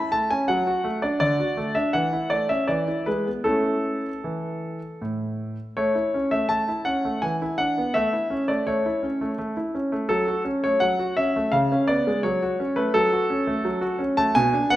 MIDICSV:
0, 0, Header, 1, 2, 480
1, 0, Start_track
1, 0, Key_signature, 3, "major"
1, 0, Tempo, 726392
1, 788, Time_signature, 3, 2, 24, 8
1, 1761, Tempo, 778210
1, 3681, Tempo, 720288
1, 7521, Tempo, 704225
1, 9718, End_track
2, 0, Start_track
2, 0, Title_t, "Grand piano"
2, 0, Program_c, 0, 0
2, 0, Note_on_c, 0, 64, 45
2, 0, Note_on_c, 0, 83, 74
2, 78, Note_on_c, 0, 81, 78
2, 79, Note_off_c, 0, 83, 0
2, 81, Note_on_c, 0, 57, 43
2, 85, Note_off_c, 0, 64, 0
2, 196, Note_off_c, 0, 81, 0
2, 202, Note_on_c, 0, 80, 74
2, 203, Note_off_c, 0, 57, 0
2, 203, Note_on_c, 0, 61, 43
2, 316, Note_off_c, 0, 80, 0
2, 317, Note_off_c, 0, 61, 0
2, 317, Note_on_c, 0, 78, 76
2, 325, Note_on_c, 0, 54, 57
2, 433, Note_off_c, 0, 54, 0
2, 441, Note_on_c, 0, 66, 44
2, 555, Note_on_c, 0, 57, 45
2, 560, Note_off_c, 0, 66, 0
2, 670, Note_off_c, 0, 78, 0
2, 676, Note_on_c, 0, 74, 68
2, 677, Note_off_c, 0, 57, 0
2, 681, Note_on_c, 0, 62, 41
2, 783, Note_off_c, 0, 74, 0
2, 793, Note_on_c, 0, 74, 81
2, 794, Note_off_c, 0, 62, 0
2, 797, Note_on_c, 0, 50, 55
2, 909, Note_off_c, 0, 50, 0
2, 922, Note_on_c, 0, 66, 39
2, 1039, Note_on_c, 0, 57, 43
2, 1042, Note_off_c, 0, 66, 0
2, 1153, Note_off_c, 0, 74, 0
2, 1155, Note_on_c, 0, 76, 68
2, 1159, Note_on_c, 0, 62, 41
2, 1161, Note_off_c, 0, 57, 0
2, 1274, Note_off_c, 0, 76, 0
2, 1276, Note_off_c, 0, 62, 0
2, 1277, Note_on_c, 0, 78, 74
2, 1285, Note_on_c, 0, 52, 50
2, 1397, Note_off_c, 0, 52, 0
2, 1406, Note_on_c, 0, 64, 40
2, 1518, Note_off_c, 0, 78, 0
2, 1519, Note_on_c, 0, 74, 69
2, 1525, Note_on_c, 0, 57, 37
2, 1528, Note_off_c, 0, 64, 0
2, 1640, Note_off_c, 0, 74, 0
2, 1647, Note_on_c, 0, 76, 64
2, 1649, Note_off_c, 0, 57, 0
2, 1651, Note_on_c, 0, 61, 36
2, 1765, Note_off_c, 0, 76, 0
2, 1767, Note_off_c, 0, 61, 0
2, 1767, Note_on_c, 0, 74, 64
2, 1774, Note_on_c, 0, 52, 50
2, 1881, Note_off_c, 0, 52, 0
2, 1893, Note_on_c, 0, 64, 40
2, 2000, Note_off_c, 0, 74, 0
2, 2006, Note_on_c, 0, 71, 65
2, 2010, Note_off_c, 0, 64, 0
2, 2013, Note_on_c, 0, 56, 40
2, 2129, Note_on_c, 0, 59, 35
2, 2132, Note_off_c, 0, 56, 0
2, 2150, Note_off_c, 0, 71, 0
2, 2239, Note_on_c, 0, 69, 67
2, 2245, Note_on_c, 0, 61, 36
2, 2245, Note_on_c, 0, 64, 36
2, 2246, Note_off_c, 0, 59, 0
2, 2246, Note_on_c, 0, 57, 46
2, 2586, Note_off_c, 0, 57, 0
2, 2634, Note_off_c, 0, 61, 0
2, 2634, Note_off_c, 0, 64, 0
2, 2733, Note_on_c, 0, 52, 42
2, 3068, Note_off_c, 0, 52, 0
2, 3210, Note_off_c, 0, 69, 0
2, 3211, Note_on_c, 0, 45, 46
2, 3540, Note_off_c, 0, 45, 0
2, 3674, Note_on_c, 0, 73, 69
2, 3676, Note_on_c, 0, 57, 54
2, 3795, Note_off_c, 0, 57, 0
2, 3797, Note_on_c, 0, 64, 36
2, 3924, Note_on_c, 0, 61, 43
2, 3926, Note_off_c, 0, 64, 0
2, 4037, Note_on_c, 0, 76, 68
2, 4038, Note_on_c, 0, 57, 40
2, 4039, Note_off_c, 0, 73, 0
2, 4049, Note_off_c, 0, 61, 0
2, 4150, Note_off_c, 0, 57, 0
2, 4154, Note_on_c, 0, 81, 72
2, 4160, Note_off_c, 0, 76, 0
2, 4160, Note_on_c, 0, 57, 43
2, 4279, Note_off_c, 0, 57, 0
2, 4284, Note_on_c, 0, 64, 40
2, 4395, Note_on_c, 0, 78, 70
2, 4401, Note_off_c, 0, 81, 0
2, 4403, Note_on_c, 0, 61, 41
2, 4412, Note_off_c, 0, 64, 0
2, 4527, Note_on_c, 0, 57, 39
2, 4532, Note_off_c, 0, 61, 0
2, 4641, Note_on_c, 0, 80, 68
2, 4643, Note_off_c, 0, 78, 0
2, 4648, Note_off_c, 0, 57, 0
2, 4648, Note_on_c, 0, 52, 49
2, 4766, Note_off_c, 0, 52, 0
2, 4774, Note_on_c, 0, 64, 42
2, 4881, Note_on_c, 0, 78, 78
2, 4886, Note_off_c, 0, 80, 0
2, 4887, Note_on_c, 0, 62, 43
2, 4898, Note_off_c, 0, 64, 0
2, 5012, Note_on_c, 0, 59, 38
2, 5014, Note_off_c, 0, 62, 0
2, 5122, Note_on_c, 0, 76, 76
2, 5124, Note_off_c, 0, 78, 0
2, 5129, Note_off_c, 0, 59, 0
2, 5130, Note_on_c, 0, 57, 56
2, 5244, Note_off_c, 0, 57, 0
2, 5249, Note_on_c, 0, 64, 39
2, 5363, Note_on_c, 0, 61, 44
2, 5372, Note_off_c, 0, 64, 0
2, 5455, Note_off_c, 0, 76, 0
2, 5482, Note_on_c, 0, 74, 62
2, 5485, Note_on_c, 0, 57, 40
2, 5490, Note_off_c, 0, 61, 0
2, 5600, Note_off_c, 0, 57, 0
2, 5603, Note_off_c, 0, 74, 0
2, 5606, Note_on_c, 0, 73, 64
2, 5610, Note_on_c, 0, 57, 47
2, 5724, Note_off_c, 0, 57, 0
2, 5734, Note_on_c, 0, 64, 43
2, 5847, Note_on_c, 0, 61, 40
2, 5855, Note_off_c, 0, 64, 0
2, 5969, Note_on_c, 0, 57, 42
2, 5971, Note_off_c, 0, 61, 0
2, 6034, Note_off_c, 0, 73, 0
2, 6074, Note_off_c, 0, 57, 0
2, 6084, Note_on_c, 0, 57, 47
2, 6198, Note_off_c, 0, 57, 0
2, 6208, Note_on_c, 0, 64, 46
2, 6326, Note_on_c, 0, 61, 44
2, 6328, Note_off_c, 0, 64, 0
2, 6442, Note_on_c, 0, 57, 42
2, 6446, Note_off_c, 0, 61, 0
2, 6553, Note_on_c, 0, 69, 76
2, 6558, Note_off_c, 0, 57, 0
2, 6562, Note_on_c, 0, 54, 55
2, 6674, Note_off_c, 0, 54, 0
2, 6678, Note_on_c, 0, 66, 40
2, 6770, Note_off_c, 0, 69, 0
2, 6793, Note_on_c, 0, 61, 45
2, 6802, Note_off_c, 0, 66, 0
2, 6919, Note_on_c, 0, 73, 76
2, 6921, Note_off_c, 0, 61, 0
2, 6922, Note_on_c, 0, 57, 40
2, 7029, Note_on_c, 0, 78, 78
2, 7036, Note_on_c, 0, 54, 44
2, 7038, Note_off_c, 0, 73, 0
2, 7046, Note_off_c, 0, 57, 0
2, 7154, Note_off_c, 0, 54, 0
2, 7157, Note_on_c, 0, 66, 46
2, 7250, Note_off_c, 0, 78, 0
2, 7272, Note_on_c, 0, 76, 76
2, 7276, Note_on_c, 0, 61, 46
2, 7284, Note_off_c, 0, 66, 0
2, 7403, Note_off_c, 0, 61, 0
2, 7403, Note_on_c, 0, 57, 44
2, 7505, Note_on_c, 0, 77, 80
2, 7512, Note_on_c, 0, 49, 58
2, 7515, Note_off_c, 0, 76, 0
2, 7520, Note_off_c, 0, 57, 0
2, 7633, Note_off_c, 0, 49, 0
2, 7642, Note_on_c, 0, 61, 48
2, 7749, Note_on_c, 0, 74, 76
2, 7755, Note_off_c, 0, 77, 0
2, 7758, Note_on_c, 0, 59, 45
2, 7769, Note_off_c, 0, 61, 0
2, 7882, Note_on_c, 0, 56, 45
2, 7887, Note_off_c, 0, 59, 0
2, 7973, Note_off_c, 0, 74, 0
2, 7992, Note_on_c, 0, 73, 72
2, 7999, Note_on_c, 0, 54, 56
2, 8003, Note_off_c, 0, 56, 0
2, 8118, Note_off_c, 0, 54, 0
2, 8125, Note_on_c, 0, 66, 44
2, 8242, Note_on_c, 0, 61, 51
2, 8250, Note_off_c, 0, 66, 0
2, 8352, Note_on_c, 0, 71, 72
2, 8355, Note_on_c, 0, 57, 48
2, 8358, Note_off_c, 0, 73, 0
2, 8368, Note_off_c, 0, 61, 0
2, 8475, Note_on_c, 0, 69, 82
2, 8477, Note_off_c, 0, 71, 0
2, 8480, Note_on_c, 0, 54, 51
2, 8484, Note_off_c, 0, 57, 0
2, 8596, Note_off_c, 0, 54, 0
2, 8601, Note_on_c, 0, 66, 49
2, 8720, Note_on_c, 0, 61, 46
2, 8726, Note_off_c, 0, 66, 0
2, 8838, Note_on_c, 0, 57, 50
2, 8845, Note_off_c, 0, 61, 0
2, 8958, Note_on_c, 0, 54, 55
2, 8963, Note_off_c, 0, 57, 0
2, 9070, Note_on_c, 0, 66, 52
2, 9073, Note_off_c, 0, 54, 0
2, 9189, Note_on_c, 0, 61, 50
2, 9192, Note_off_c, 0, 69, 0
2, 9199, Note_off_c, 0, 66, 0
2, 9315, Note_on_c, 0, 81, 83
2, 9316, Note_on_c, 0, 57, 51
2, 9319, Note_off_c, 0, 61, 0
2, 9436, Note_off_c, 0, 57, 0
2, 9436, Note_off_c, 0, 81, 0
2, 9436, Note_on_c, 0, 80, 98
2, 9443, Note_on_c, 0, 47, 69
2, 9557, Note_off_c, 0, 47, 0
2, 9560, Note_on_c, 0, 62, 47
2, 9677, Note_off_c, 0, 80, 0
2, 9677, Note_on_c, 0, 78, 98
2, 9683, Note_on_c, 0, 59, 58
2, 9685, Note_off_c, 0, 62, 0
2, 9718, Note_off_c, 0, 59, 0
2, 9718, Note_off_c, 0, 78, 0
2, 9718, End_track
0, 0, End_of_file